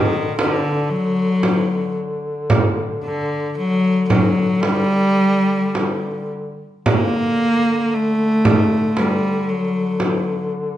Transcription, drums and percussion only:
0.39 frame drum medium
1.43 frame drum soft
2.50 frame drum medium
4.10 frame drum medium
4.63 frame drum soft
5.75 frame drum soft
6.86 frame drum medium
8.45 frame drum medium
8.97 frame drum soft
10.00 frame drum soft

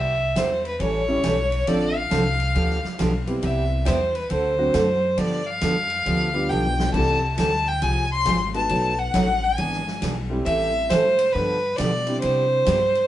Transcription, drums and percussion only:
0.36 snare medium
0.36 hi-hat pedal medium
0.36 ride medium
0.65 ride soft
0.80 ride medium
1.24 snare medium
1.24 hi-hat pedal soft
1.24 ride medium
1.52 ride soft
1.67 ride medium
2.11 snare medium
2.11 hi-hat pedal medium
2.11 ride medium
2.40 ride soft
2.55 ride medium
2.70 snare soft
2.84 snare soft
2.99 snare medium
2.99 hi-hat pedal medium
2.99 ride medium
3.27 ride soft
3.43 ride medium
3.86 snare medium
3.86 hi-hat pedal medium
3.86 ride medium
4.15 ride soft
4.30 ride medium
4.74 snare medium
4.74 hi-hat pedal medium
4.74 ride medium
5.18 ride medium
5.61 snare medium
5.61 hi-hat pedal medium
5.61 ride medium
5.90 ride soft
6.06 ride medium
6.50 hi-hat pedal medium
6.65 floor tom medium
6.79 snare medium
6.94 kick medium
6.94 crash medium
7.38 snare medium
7.38 hi-hat pedal medium
7.38 ride medium
7.82 ride medium
8.26 snare medium
8.26 hi-hat pedal medium
8.26 ride medium
8.54 ride soft
8.69 ride medium
9.14 snare medium
9.14 hi-hat pedal medium
9.14 ride medium
9.58 ride medium
9.73 snare soft
9.87 snare soft
10.02 snare medium
10.02 hi-hat pedal soft
10.02 ride medium
10.46 ride medium
10.90 snare medium
10.90 hi-hat pedal medium
10.90 ride medium
11.19 ride medium
11.78 snare medium
11.78 hi-hat pedal medium
11.78 ride medium
12.07 ride soft
12.22 ride medium
12.66 snare medium
12.66 hi-hat pedal medium
12.66 ride medium
12.95 ride soft

